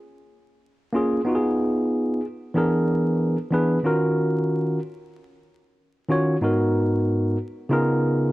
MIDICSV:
0, 0, Header, 1, 2, 480
1, 0, Start_track
1, 0, Key_signature, -6, "minor"
1, 0, Tempo, 645161
1, 940, Time_signature, 4, 2, 24, 8
1, 6192, End_track
2, 0, Start_track
2, 0, Title_t, "Tine electric piano"
2, 0, Program_c, 0, 4
2, 689, Note_on_c, 0, 58, 89
2, 699, Note_on_c, 0, 61, 82
2, 705, Note_on_c, 0, 65, 87
2, 715, Note_on_c, 0, 68, 95
2, 885, Note_off_c, 0, 58, 0
2, 890, Note_off_c, 0, 61, 0
2, 893, Note_off_c, 0, 65, 0
2, 898, Note_off_c, 0, 68, 0
2, 928, Note_on_c, 0, 59, 91
2, 937, Note_on_c, 0, 63, 76
2, 947, Note_on_c, 0, 65, 71
2, 957, Note_on_c, 0, 66, 70
2, 1005, Note_on_c, 0, 68, 90
2, 1009, Note_off_c, 0, 66, 0
2, 1634, Note_off_c, 0, 59, 0
2, 1638, Note_off_c, 0, 63, 0
2, 1643, Note_off_c, 0, 65, 0
2, 1672, Note_off_c, 0, 68, 0
2, 1892, Note_on_c, 0, 52, 92
2, 1900, Note_on_c, 0, 59, 80
2, 1905, Note_on_c, 0, 62, 81
2, 1913, Note_on_c, 0, 68, 86
2, 1918, Note_on_c, 0, 70, 98
2, 2496, Note_off_c, 0, 52, 0
2, 2501, Note_off_c, 0, 59, 0
2, 2503, Note_off_c, 0, 62, 0
2, 2507, Note_off_c, 0, 68, 0
2, 2509, Note_off_c, 0, 70, 0
2, 2610, Note_on_c, 0, 52, 86
2, 2619, Note_on_c, 0, 59, 79
2, 2621, Note_on_c, 0, 62, 79
2, 2630, Note_on_c, 0, 68, 81
2, 2633, Note_on_c, 0, 71, 95
2, 2805, Note_off_c, 0, 52, 0
2, 2810, Note_off_c, 0, 59, 0
2, 2811, Note_off_c, 0, 62, 0
2, 2815, Note_off_c, 0, 68, 0
2, 2817, Note_off_c, 0, 71, 0
2, 2850, Note_on_c, 0, 51, 77
2, 2859, Note_on_c, 0, 61, 75
2, 2863, Note_on_c, 0, 65, 74
2, 2869, Note_on_c, 0, 66, 76
2, 2875, Note_on_c, 0, 70, 95
2, 3554, Note_off_c, 0, 51, 0
2, 3559, Note_off_c, 0, 61, 0
2, 3561, Note_off_c, 0, 65, 0
2, 3564, Note_off_c, 0, 66, 0
2, 3567, Note_off_c, 0, 70, 0
2, 4526, Note_on_c, 0, 51, 82
2, 4534, Note_on_c, 0, 61, 84
2, 4540, Note_on_c, 0, 65, 74
2, 4544, Note_on_c, 0, 66, 78
2, 4550, Note_on_c, 0, 73, 96
2, 4723, Note_off_c, 0, 51, 0
2, 4727, Note_off_c, 0, 61, 0
2, 4730, Note_off_c, 0, 65, 0
2, 4732, Note_off_c, 0, 66, 0
2, 4735, Note_off_c, 0, 73, 0
2, 4769, Note_on_c, 0, 44, 82
2, 4774, Note_on_c, 0, 59, 73
2, 4778, Note_on_c, 0, 63, 81
2, 4787, Note_on_c, 0, 66, 77
2, 4793, Note_on_c, 0, 70, 90
2, 5474, Note_off_c, 0, 44, 0
2, 5477, Note_off_c, 0, 59, 0
2, 5479, Note_off_c, 0, 63, 0
2, 5483, Note_off_c, 0, 66, 0
2, 5486, Note_off_c, 0, 70, 0
2, 5723, Note_on_c, 0, 49, 92
2, 5732, Note_on_c, 0, 59, 81
2, 5734, Note_on_c, 0, 63, 81
2, 5738, Note_on_c, 0, 65, 82
2, 5747, Note_on_c, 0, 68, 82
2, 5750, Note_on_c, 0, 70, 105
2, 6192, Note_off_c, 0, 49, 0
2, 6192, Note_off_c, 0, 59, 0
2, 6192, Note_off_c, 0, 63, 0
2, 6192, Note_off_c, 0, 65, 0
2, 6192, Note_off_c, 0, 68, 0
2, 6192, Note_off_c, 0, 70, 0
2, 6192, End_track
0, 0, End_of_file